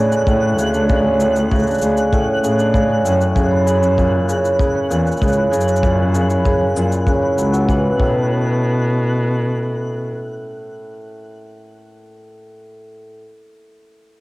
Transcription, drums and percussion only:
0.12 cabasa soft
0.27 kick medium
0.27 cabasa soft
0.59 cabasa medium
0.74 cabasa soft
0.90 kick loud
0.90 cabasa soft
1.20 cabasa medium
1.36 cabasa soft
1.51 kick medium
1.51 cabasa soft
1.55 cabasa soft
1.59 cabasa soft
1.63 cabasa soft
1.67 cabasa soft
1.71 cabasa soft
1.74 cabasa soft
1.78 cabasa soft
1.82 cabasa medium
1.97 cabasa soft
2.13 kick medium
2.13 cabasa soft
2.44 cabasa medium
2.59 cabasa soft
2.74 kick medium
2.74 cabasa soft
3.06 cabasa medium
3.21 cabasa soft
3.36 kick medium
3.36 cabasa soft
3.67 cabasa medium
3.83 cabasa soft
3.98 kick medium
3.98 cabasa soft
4.29 cabasa medium
4.45 cabasa soft
4.59 kick medium
4.59 cabasa soft
4.91 cabasa medium
5.07 cabasa soft
5.12 cabasa soft
5.17 cabasa soft
5.22 kick medium
5.22 cabasa soft
5.28 cabasa soft
5.32 cabasa soft
5.53 cabasa medium
5.61 cabasa soft
5.68 cabasa soft
5.76 cabasa soft
5.83 kick loud
5.83 cabasa soft
6.15 cabasa medium
6.30 cabasa soft
6.45 kick medium
6.45 cabasa soft
6.77 cabasa medium
6.92 cabasa soft
7.07 kick medium
7.07 cabasa soft
7.38 cabasa medium
7.54 cabasa soft
7.69 kick medium
7.69 cabasa soft
8.00 kick medium

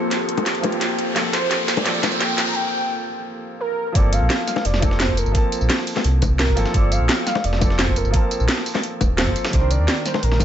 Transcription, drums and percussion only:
0.11 snare medium
0.11 closed hi-hat medium
0.29 closed hi-hat medium
0.38 closed hi-hat soft
0.38 high bongo loud
0.46 snare medium
0.46 closed hi-hat medium
0.55 closed hi-hat soft
0.64 closed hi-hat medium
0.64 high bongo loud
0.72 closed hi-hat soft
0.81 snare medium
0.81 closed hi-hat medium
0.99 closed hi-hat medium
1.16 snare medium
1.16 closed hi-hat medium
1.33 snare medium
1.33 closed hi-hat medium
1.33 tambourine medium
1.51 snare medium
1.51 closed hi-hat medium
1.68 snare medium
1.68 closed hi-hat medium
1.68 tambourine medium
1.77 closed hi-hat soft
1.77 high bongo loud
1.86 snare medium
1.86 closed hi-hat medium
1.94 closed hi-hat soft
2.03 snare medium
2.03 closed hi-hat medium
2.03 tambourine medium
2.03 high bongo loud
2.12 closed hi-hat soft
2.21 snare medium
2.21 closed hi-hat medium
2.38 snare medium
2.38 closed hi-hat medium
2.38 tambourine medium
2.47 tambourine soft
3.95 kick loud
3.95 closed hi-hat loud
3.95 closed hi-hat medium
4.13 closed hi-hat medium
4.13 tambourine medium
4.30 snare loud
4.30 closed hi-hat loud
4.30 closed hi-hat medium
4.39 closed hi-hat soft
4.47 snare soft
4.47 closed hi-hat medium
4.47 tambourine medium
4.56 snare medium
4.56 high bongo medium
4.65 closed hi-hat loud
4.65 closed hi-hat medium
4.74 snare medium
4.74 snare soft
4.82 kick loud
4.82 closed hi-hat medium
4.82 tambourine medium
4.82 high bongo medium
4.91 snare soft
5.00 snare loud
5.00 closed hi-hat medium
5.00 closed hi-hat loud
5.09 kick medium
5.17 closed hi-hat medium
5.17 tambourine medium
5.26 tambourine soft
5.35 kick loud
5.35 closed hi-hat medium
5.52 closed hi-hat medium
5.52 tambourine medium
5.61 tambourine soft
5.70 snare loud
5.70 closed hi-hat medium
5.79 snare medium
5.87 closed hi-hat medium
5.87 open hi-hat medium
5.87 tambourine medium
5.96 snare soft
5.96 high bongo medium
6.04 closed hi-hat medium
6.22 kick loud
6.22 closed hi-hat medium
6.22 tambourine medium
6.22 high bongo medium
6.39 snare loud
6.39 closed hi-hat medium
6.48 kick medium
6.48 closed hi-hat soft
6.57 closed hi-hat medium
6.57 tambourine medium
6.66 snare medium
6.66 tambourine soft
6.74 kick loud
6.74 closed hi-hat medium
6.92 closed hi-hat medium
6.92 tambourine medium
7.09 snare loud
7.09 closed hi-hat medium
7.18 closed hi-hat soft
7.27 snare soft
7.27 closed hi-hat medium
7.27 tambourine medium
7.35 snare medium
7.35 high bongo loud
7.44 closed hi-hat medium
7.53 snare medium
7.53 snare soft
7.61 kick loud
7.61 closed hi-hat medium
7.61 tambourine medium
7.61 high bongo loud
7.70 snare soft
7.79 snare loud
7.79 closed hi-hat medium
7.88 kick medium
7.96 closed hi-hat medium
7.96 tambourine medium
8.05 tambourine soft
8.14 kick loud
8.14 closed hi-hat medium
8.31 closed hi-hat medium
8.31 tambourine medium
8.40 tambourine soft
8.49 snare loud
8.49 closed hi-hat medium
8.57 snare medium
8.66 closed hi-hat medium
8.66 open hi-hat medium
8.66 tambourine medium
8.75 snare soft
8.75 high bongo loud
8.83 closed hi-hat medium
9.01 kick loud
9.01 closed hi-hat medium
9.01 tambourine medium
9.01 high bongo medium
9.18 snare loud
9.18 closed hi-hat medium
9.27 kick medium
9.27 closed hi-hat soft
9.36 closed hi-hat medium
9.36 tambourine medium
9.45 snare loud
9.45 closed hi-hat medium
9.45 tambourine soft
9.53 kick loud
9.53 closed hi-hat medium
9.71 closed hi-hat medium
9.71 tambourine medium
9.88 snare loud
9.88 closed hi-hat medium
9.97 closed hi-hat soft
10.05 snare soft
10.05 closed hi-hat medium
10.05 tambourine medium
10.14 snare medium
10.14 high bongo loud
10.23 closed hi-hat medium
10.32 snare medium
10.32 snare soft
10.40 kick loud
10.40 closed hi-hat medium
10.40 tambourine medium
10.40 high bongo medium

